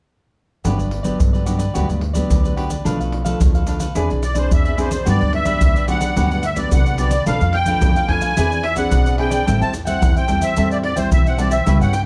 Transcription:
0.64 G1 G2 F#3 B3 D4 F#4 G4 B4 D5, pandeiro, maracas, surdo
0.78 G4 B4 D5, pandeiro, maracas, surdo
0.91 pandeiro
1.03 F#3 B3 D4 G4 B4 D5, pandeiro, maracas, surdo
1.19 G2 D3, muted cavaquinho stroke, pandeiro, maracas, surdo
1.33 G4 B4 D5, pandeiro, maracas
1.45 F#3 B3 D4 F#4 G4 B4 D5, pandeiro, maracas
1.58 G4 B4 D5, pandeiro, maracas, surdo
1.74 D2 G2 F#3 B3 D4 F#4 G4 B4 D5, pandeiro, maracas, surdo
1.89 D2 G4 B4 D5, pandeiro, maracas
2.01 muted cavaquinho stroke, pandeiro
2.13 F#3 B3 D4 G4 B4 D5, pandeiro, maracas, surdo
2.30 D2 D3, pandeiro, maracas, surdo
2.43 G4 B4 D5, pandeiro, maracas
2.56 F#3 B3 D4 F#4 G4 B4 D5, pandeiro
2.70 G4 B4 D5, pandeiro, maracas
2.85 B1 B2 F3 A3 D4 A4 B4 F5, pandeiro, maracas, surdo
3.00 A4 B4 F5, pandeiro, maracas, surdo
3.12 pandeiro
3.24 F3 A3 D4 A4 B4 F5, pandeiro, maracas, surdo
3.40 D2 B2, pandeiro, maracas, surdo
3.55 A4 B4 F5, pandeiro, maracas
3.67 F3 A3 D4 A4 B4 F5, pandeiro, maracas
3.80 A4 B4 F5, pandeiro, maracas, surdo
3.95 E2 E3 C4 D4 E4 G#4 B4 D5, pandeiro, maracas, surdo
4.10 B1 G#4 B4 D5, pandeiro, maracas
4.23 D5, muted cavaquinho stroke, pandeiro, maracas
4.34 C4 D4 G#4 B4 D5, pandeiro, maracas, surdo
4.38 C5
4.51 E2 B2 E5, pandeiro, maracas, surdo
4.65 G#4 B4 D5, pandeiro, maracas
4.77 C4 D4 E4 G#4 B4 C5 D5, pandeiro, maracas, surdo
4.90 G#4 B4 D5, pandeiro, maracas
5.05 G2 F#3 B3 D4 F#4 G4 B4 D5, pandeiro, maracas, surdo
5.20 D2 G4 B4 D5, pandeiro, maracas, surdo
5.32 E5, muted cavaquinho stroke, pandeiro
5.45 F#3 B3 D4 G4 B4 D5, pandeiro, maracas, surdo
5.61 D2 D3, pandeiro, maracas, surdo
5.75 G4 B4 D5, pandeiro, maracas
5.87 D2 F#3 B3 D4 F#4 G4 B4 D5 F#5, pandeiro, maracas
6.00 G4 B4 D5, pandeiro, maracas, surdo
6.16 D2 G2 F#3 B3 D4 F#4 G4 B4 D5, pandeiro, maracas, surdo
6.31 G4 B4 D5, pandeiro, maracas
6.43 E5, muted cavaquinho stroke, pandeiro, maracas
6.56 F#3 B3 D4 G4 B4 D5, pandeiro, maracas, surdo
6.72 C2 D3 F#5, pandeiro, maracas, surdo
6.86 G4 B4 D5, pandeiro, maracas
6.98 F#3 B3 D4 F#4 G4 B4 D5, pandeiro, maracas
7.11 G4 B4 D5, pandeiro, maracas
7.26 B1 B2 F3 A3 D4 A4 B4 F5, pandeiro, maracas, surdo
7.41 F2 A4 B4 F5, pandeiro, maracas, surdo
7.53 G5, muted cavaquinho stroke, pandeiro
7.66 F3 A3 D4 A4 B4 F5, pandeiro, maracas, surdo
7.81 F2 B2, pandeiro, maracas, surdo
7.96 A4 B4 F5, pandeiro, maracas
8.08 F2 F3 A3 D4 A4 B4 F5 G#5, pandeiro
8.21 A4 B4 F5, pandeiro, maracas, surdo
8.37 E2 E3 C4 D4 E4 G#4 B4 D5, pandeiro, maracas, surdo
8.52 G#4 B4 D5, pandeiro, maracas
8.63 E5, muted cavaquinho stroke, pandeiro
8.76 C4 D4 G#4 B4 D5 F#5, pandeiro, maracas, surdo
8.91 B1 B2, pandeiro, maracas, surdo
9.06 G#4 B4 D5, pandeiro, maracas
9.18 C4 D4 E4 G#4 B4 D5 G5, pandeiro, surdo
9.31 G#4 B4 D5, pandeiro, maracas
9.46 A1 A2 G3 C4 E4 A4 C5 E5 G5, pandeiro, maracas, surdo
9.61 E2 C5 E5 G5 A5, pandeiro, maracas, surdo
9.73 muted cavaquinho stroke, pandeiro, maracas
9.85 G3 C4 E4 C5 E5 F#5 G5, pandeiro, maracas, surdo
10.02 E2 E3, pandeiro, maracas, surdo
10.16 C5 E5 G5, pandeiro, maracas
10.28 E2 G3 C4 E4 A4 C5 E5 G5, pandeiro, maracas
10.41 C5 E5 G5, pandeiro, maracas, surdo
10.56 E2 A2 G3 C4 E4 A4 C5 E5 G5, pandeiro, maracas, surdo
10.71 C5 D5 E5 G5, pandeiro, maracas
10.83 D5, muted cavaquinho stroke, pandeiro
10.96 G3 C4 E4 C5 E5 G5, pandeiro, maracas, surdo
11.12 B1 E3 E5, pandeiro, maracas, surdo
11.27 C5 E5 F#5 G5, pandeiro, maracas
11.38 G3 C4 E4 A4 C5 D5 E5 G5, pandeiro, maracas
11.51 C5 E5 G5, pandeiro, maracas
11.66 C#2 C#3 G3 B3 E4 B4 C#5 G5, pandeiro, maracas, surdo
11.81 G2 B4 C#5 F#5 G5, pandeiro, maracas, surdo
11.92 G5, muted cavaquinho stroke, pandeiro, maracas

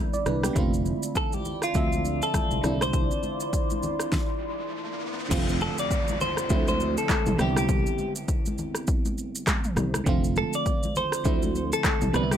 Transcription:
Already playing: E4 D5 B5
0.13 D5, high conga, shaker
0.26 C2 D4 B4, cross-stick, low conga, shaker
0.43 B3 G4, cross-stick, high conga, shaker
0.53 F1 D3 A3 C4 F4 A5, kick, low conga, shaker
0.58 F4
0.73 shaker
0.86 high conga, shaker
1.03 shaker
1.15 A4, kick, shaker
1.33 G4, high conga, shaker
1.45 low conga, shaker
1.62 F4, cross-stick, shaker
1.74 D2 D3 F3 C4 E5 C6, kick, shaker
1.92 high conga, shaker
2.05 shaker
2.22 A4, shaker
2.34 kick, cross-stick, high conga, low conga, shaker
2.51 C2, high conga, shaker
2.61 C2 D3 C4 D4 E4 D5 B5, cross-stick, low conga, shaker
2.67 E4
2.81 C5, cross-stick, high conga, shaker
2.93 kick, riser, low conga, shaker
3.11 shaker
3.23 high conga, shaker
3.40 shaker
3.53 kick, shaker
3.70 high conga, shaker
3.83 low conga, shaker
4.00 cross-stick, shaker
4.12 kick, snare
5.29 F1 D3 F3 G3 C4, kick, crash, downlifter, low conga, shaker
5.34 A3 F4
5.49 shaker
5.61 A4, high conga, shaker
5.78 D5, shaker
5.91 kick, shaker
6.08 high conga, shaker
6.21 C5, low conga, shaker
6.37 cross-stick, shaker
6.49 D2 D3 F3 A3 C4 E4, kick, shaker
6.67 C5, high conga, shaker
6.80 shaker
6.97 A4, shaker
7.09 kick, cross-stick, clap, high conga, shaker
7.26 C2, mid tom, shaker
7.37 C2 D3 G3 B3 C4 G4, cross-stick, mid tom, low conga, shaker
7.42 E4
7.56 G4, cross-stick, high conga, shaker
7.69 kick, low conga, shaker
7.86 shaker
7.98 high conga, shaker
8.16 shaker
8.28 kick, shaker
8.46 high conga, shaker
8.58 low conga, shaker
8.75 cross-stick, shaker
8.87 kick, shaker
9.05 high conga, shaker
9.18 shaker
9.35 shaker
9.47 kick, cross-stick, clap, high conga, shaker
9.64 mid tom, shaker
9.76 C2, cross-stick, mid tom, low conga, shaker
9.94 cross-stick, high conga, shaker
10.04 F1 D3 F3 A3 C4, kick, low conga, shaker
10.09 F4
10.24 shaker
10.36 A4, high conga, shaker
10.53 D5, shaker
10.66 kick, shaker
10.83 high conga, shaker
10.96 C5, low conga, shaker
11.12 cross-stick, shaker
11.24 D2 D3 F3 A3 C4 E4, kick, shaker
11.42 high conga, shaker
11.55 shaker
11.73 A4, shaker
11.84 kick, cross-stick, clap, high conga, shaker
12.01 C2, mid tom, shaker
12.12 C2 D3 G3 B3 C4, cross-stick, mid tom, low conga, shaker
12.16 D4 B4
12.23 E4
12.31 G4, cross-stick, high conga, shaker

